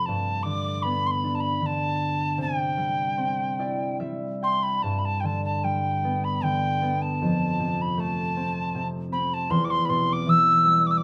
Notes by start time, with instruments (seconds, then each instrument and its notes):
Already playing: harp F2 C3 A3 C4
0.06 harp G2, tin whistle A5
0.43 harp D3, tin whistle D6
0.82 harp B3, tin whistle B5
1.06 tin whistle C6
1.11 tin whistle B5
1.24 harp D4
1.35 tin whistle A5
1.40 tin whistle B5
1.61 harp D3
1.66 tin whistle A5
2.38 harp C3, tin whistle G5
2.77 harp G3
3.17 harp C4
3.59 harp E4 D5
4.00 harp G3 E5
4.42 harp G5, tin whistle C6
4.63 tin whistle B5
4.82 harp G2, tin whistle A5
4.99 tin whistle B5
5.05 tin whistle A5
5.20 harp D3, tin whistle G5
5.25 tin whistle A5
5.44 tin whistle A5
5.63 harp G3, tin whistle G5
6.04 harp B3
6.24 tin whistle B5
6.43 harp D3, tin whistle G5
6.82 harp B3
7.02 tin whistle A5
7.22 harp F2
7.60 harp C3
7.81 tin whistle B5
7.97 harp A3, tin whistle A5
8.36 harp C4
8.75 harp C3
9.12 harp C4, tin whistle B5
9.33 tin whistle A5
9.50 harp E2, tin whistle C6
9.64 tin whistle D6
9.70 tin whistle C6
9.85 harp B2, tin whistle B5
9.89 tin whistle C6
10.12 tin whistle D6
10.27 harp E3, tin whistle E6
10.65 harp G3
10.86 tin whistle D6
10.91 tin whistle E6
10.97 tin whistle D6